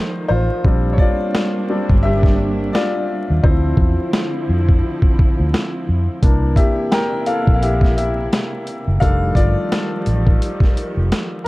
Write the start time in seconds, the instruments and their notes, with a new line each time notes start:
Already playing: upright piano D#3 G3 A3 D4 D#4 C5, string section D#3 F3 A3
0.28 fingered electric bass A1, upright piano F4 C5
0.65 fingered electric bass A#1, string section G3 A#3 D4, upright piano G3 C4 D4, kick
0.93 upright piano C#5
0.98 upright piano F4 D5, kick
1.35 snare
1.69 upright piano G3 C4 D4
1.90 fingered electric bass G1, kick
2.03 upright piano G4 E5
2.23 kick, snare
2.73 upright piano F4 D5, snare
3.30 fingered electric bass D#2
3.43 fingered electric bass D2, string section D3 F3 C4 E4, upright piano F3 C4 E4 C5, kick
3.77 fingered electric bass E2, kick
4.13 snare
4.49 fingered electric bass F2
4.69 kick
5.02 kick
5.19 kick
5.40 fingered electric bass D2
5.54 snare
5.89 fingered electric bass F2
6.22 fingered electric bass C2, string section C3 A#3 E4, upright piano E3 A#3 D4, kick, closed hi-hat
6.56 upright piano G4 E5, kick, closed hi-hat
6.92 upright piano A#4 G5, snare, closed hi-hat
7.26 upright piano A4 F5, closed hi-hat
7.47 fingered electric bass A#1, kick
7.54 upright piano F5
7.62 upright piano G4 E5, closed hi-hat
7.81 kick, snare
7.97 upright piano G4 E5, closed hi-hat
8.33 snare, closed hi-hat
8.67 closed hi-hat
8.87 fingered electric bass F#1
9.00 fingered electric bass F1, upright piano D#3 G3 A3 D4 A4 F5, string section D#3 F3 G3, kick, closed hi-hat
9.35 fingered electric bass G1, upright piano F4 D5, kick, closed hi-hat
9.72 snare, closed hi-hat
10.06 fingered electric bass A1, closed hi-hat
10.27 kick
10.42 closed hi-hat
10.60 kick, snare
10.77 closed hi-hat
10.97 fingered electric bass F1
11.12 snare, closed hi-hat
11.44 upright piano A#4